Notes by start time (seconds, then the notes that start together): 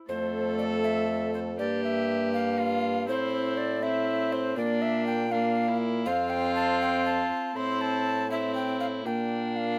0.09 F2 A3 A4 C5
0.59 D5
0.84 E5
1.34 C5
1.59 G2 A#3 G4 D5
1.84 E5
2.33 F5
2.60 F4
3.08 A2 C4 E4 C5
3.57 D5
3.82 C4 E4 E5
4.33 C5
4.57 A#2 A#3 D4 D5
4.82 E5
5.06 G5
5.31 A#3 D4 F5
5.69 E4
6.06 F2 C4 F4 F5
6.30 G5
6.56 A5
6.81 G5
7.06 A5
7.55 A2 C4 E4 C6
7.81 A5
8.30 C4 E4 E5
8.55 G5
8.80 F5
9.05 A#2 A#3 D4 G5
9.56 F5